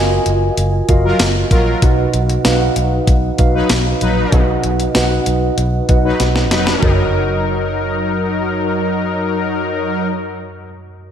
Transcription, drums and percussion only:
0.26 closed hi-hat medium
0.57 closed hi-hat medium
0.89 kick medium
0.89 closed hi-hat medium
1.19 snare loud
1.19 closed hi-hat medium
1.19 tambourine medium
1.51 kick loud
1.51 closed hi-hat medium
1.82 kick loud
1.82 closed hi-hat loud
2.14 closed hi-hat medium
2.30 closed hi-hat medium
2.45 snare loud
2.45 closed hi-hat medium
2.45 tambourine medium
2.76 closed hi-hat medium
3.07 kick loud
3.07 closed hi-hat medium
3.38 kick medium
3.38 closed hi-hat medium
3.70 snare loud
3.70 closed hi-hat medium
3.70 tambourine medium
4.01 closed hi-hat medium
4.32 kick loud
4.32 closed hi-hat medium
4.64 closed hi-hat medium
4.80 closed hi-hat medium
4.95 snare loud
4.95 closed hi-hat medium
4.95 tambourine medium
5.26 closed hi-hat medium
5.58 closed hi-hat medium
5.89 kick medium
5.89 closed hi-hat medium
6.20 snare medium
6.20 closed hi-hat medium
6.36 snare medium
6.51 snare medium
6.51 closed hi-hat medium
6.67 snare loud
6.83 kick loud
6.83 floor tom loud

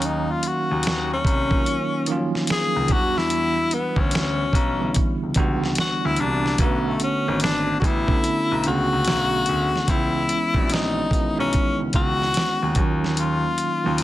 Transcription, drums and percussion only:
0.02 closed hi-hat medium
0.43 closed hi-hat medium
0.83 closed hi-hat medium
0.87 snare medium
1.25 kick loud
1.25 closed hi-hat medium
1.51 kick medium
1.66 closed hi-hat medium
2.06 closed hi-hat medium
2.35 snare soft
2.47 snare loud
2.47 closed hi-hat medium
2.88 kick medium
2.88 closed hi-hat medium
3.18 snare soft
3.30 closed hi-hat medium
3.71 closed hi-hat medium
3.96 kick medium
4.11 closed hi-hat medium
4.15 snare loud
4.53 kick medium
4.53 closed hi-hat medium
4.94 kick medium
4.94 closed hi-hat medium
5.34 kick medium
5.34 closed hi-hat medium
5.64 snare soft
5.75 snare loud
5.75 closed hi-hat medium
6.16 closed hi-hat medium
6.46 snare soft
6.58 kick loud
6.58 closed hi-hat medium
7.00 closed hi-hat medium
7.40 closed hi-hat medium
7.44 snare loud
7.82 kick loud
7.82 closed hi-hat medium
8.08 kick medium
8.24 closed hi-hat medium
8.64 closed hi-hat medium
9.05 snare loud
9.05 closed hi-hat medium
9.46 closed hi-hat medium
9.76 snare soft
9.88 kick medium
9.88 closed hi-hat medium
10.29 closed hi-hat medium
10.54 kick medium
10.70 closed hi-hat medium
10.74 snare loud
11.11 kick loud
11.11 closed hi-hat medium
11.53 kick medium
11.53 closed hi-hat medium
11.93 kick medium
11.93 closed hi-hat medium
12.22 snare soft
12.34 snare loud
12.34 closed hi-hat medium
12.75 kick medium
12.75 closed hi-hat medium
13.04 snare soft
13.17 closed hi-hat medium
13.58 closed hi-hat medium
13.98 closed hi-hat medium

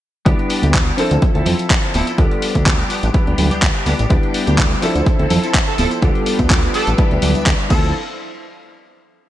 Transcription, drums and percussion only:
0.25 kick loud
0.25 closed hi-hat medium
0.25 tambourine soft
0.39 closed hi-hat soft
0.49 open hi-hat loud
0.49 tambourine medium
0.62 closed hi-hat medium
0.62 tambourine soft
0.62 high conga medium
0.74 kick loud
0.74 clap loud
0.74 closed hi-hat medium
0.87 closed hi-hat soft
0.98 open hi-hat medium
0.98 tambourine medium
1.11 closed hi-hat medium
1.11 tambourine medium
1.22 kick loud
1.22 closed hi-hat medium
1.22 tambourine soft
1.35 closed hi-hat soft
1.35 high conga medium
1.46 open hi-hat loud
1.46 tambourine loud
1.46 low conga loud
1.59 closed hi-hat medium
1.59 tambourine medium
1.70 kick loud
1.70 clap loud
1.70 closed hi-hat medium
1.83 closed hi-hat soft
1.94 open hi-hat medium
1.94 tambourine medium
1.94 high conga medium
2.07 closed hi-hat medium
2.07 tambourine medium
2.18 kick loud
2.18 closed hi-hat medium
2.31 closed hi-hat soft
2.42 open hi-hat loud
2.42 tambourine medium
2.55 kick medium
2.55 closed hi-hat medium
2.55 tambourine medium
2.55 high conga medium
2.66 kick loud
2.66 clap loud
2.66 closed hi-hat medium
2.79 closed hi-hat soft
2.90 open hi-hat medium
2.90 tambourine loud
3.03 closed hi-hat medium
3.03 tambourine medium
3.14 kick loud
3.14 closed hi-hat medium
3.14 tambourine soft
3.27 closed hi-hat soft
3.27 high conga medium
3.38 open hi-hat loud
3.38 tambourine medium
3.38 low conga medium
3.51 closed hi-hat medium
3.51 tambourine soft
3.62 kick loud
3.62 clap loud
3.62 closed hi-hat medium
3.75 closed hi-hat soft
3.86 open hi-hat medium
3.86 tambourine medium
3.86 high conga medium
3.99 closed hi-hat medium
3.99 tambourine medium
4.10 kick loud
4.10 closed hi-hat medium
4.23 closed hi-hat soft
4.34 open hi-hat loud
4.34 tambourine medium
4.47 closed hi-hat soft
4.47 tambourine soft
4.47 high conga medium
4.58 kick loud
4.58 clap loud
4.58 closed hi-hat medium
4.58 tambourine soft
4.71 closed hi-hat soft
4.82 open hi-hat loud
4.82 tambourine medium
4.95 closed hi-hat medium
4.95 tambourine medium
5.06 kick loud
5.06 closed hi-hat medium
5.06 tambourine soft
5.19 closed hi-hat soft
5.19 high conga medium
5.30 open hi-hat loud
5.30 tambourine medium
5.30 low conga loud
5.44 closed hi-hat medium
5.44 tambourine medium
5.54 kick loud
5.54 clap loud
5.54 closed hi-hat medium
5.67 closed hi-hat soft
5.78 open hi-hat medium
5.78 tambourine medium
5.78 high conga loud
5.91 closed hi-hat medium
5.91 tambourine medium
6.02 kick loud
6.02 closed hi-hat soft
6.02 tambourine soft
6.15 closed hi-hat soft
6.26 open hi-hat loud
6.26 tambourine loud
6.39 kick medium
6.39 closed hi-hat soft
6.39 tambourine soft
6.39 high conga loud
6.50 kick loud
6.50 clap loud
6.50 closed hi-hat soft
6.63 closed hi-hat soft
6.74 open hi-hat medium
6.74 tambourine medium
6.87 closed hi-hat soft
6.87 tambourine soft
6.98 kick loud
6.98 closed hi-hat medium
6.98 tambourine soft
7.11 closed hi-hat soft
7.11 high conga medium
7.22 open hi-hat loud
7.22 tambourine medium
7.22 low conga loud
7.35 closed hi-hat soft
7.35 tambourine soft
7.46 kick loud
7.46 clap loud
7.46 closed hi-hat medium
7.59 closed hi-hat soft
7.70 kick loud
7.70 crash medium
7.70 tambourine loud
7.70 high conga loud
7.83 tambourine soft

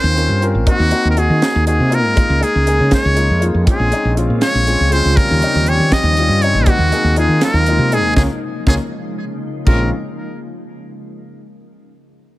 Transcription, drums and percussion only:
0.17 closed hi-hat medium
0.42 closed hi-hat soft
0.67 kick loud
0.67 closed hi-hat medium
0.91 closed hi-hat medium
1.17 closed hi-hat medium
1.42 snare loud
1.42 closed hi-hat medium
1.67 closed hi-hat medium
1.92 closed hi-hat medium
2.17 kick loud
2.17 closed hi-hat medium
2.43 closed hi-hat medium
2.67 closed hi-hat medium
2.91 kick medium
2.91 snare loud
2.91 closed hi-hat medium
3.17 closed hi-hat medium
3.42 closed hi-hat medium
3.67 kick loud
3.67 closed hi-hat medium
3.92 closed hi-hat medium
4.17 closed hi-hat medium
4.41 snare loud
4.41 closed hi-hat medium
4.67 closed hi-hat medium
4.92 closed hi-hat medium
5.17 kick loud
5.17 closed hi-hat medium
5.42 closed hi-hat medium
5.66 closed hi-hat medium
5.92 kick medium
5.92 snare loud
5.92 closed hi-hat medium
6.17 closed hi-hat medium
6.42 closed hi-hat medium
6.66 kick loud
6.66 closed hi-hat medium
6.92 closed hi-hat medium
7.16 closed hi-hat medium
7.41 snare loud
7.41 closed hi-hat medium
7.66 closed hi-hat medium
7.92 closed hi-hat medium
8.17 kick medium
8.17 snare loud
8.67 kick loud
8.67 snare medium
9.67 kick loud
9.67 crash medium

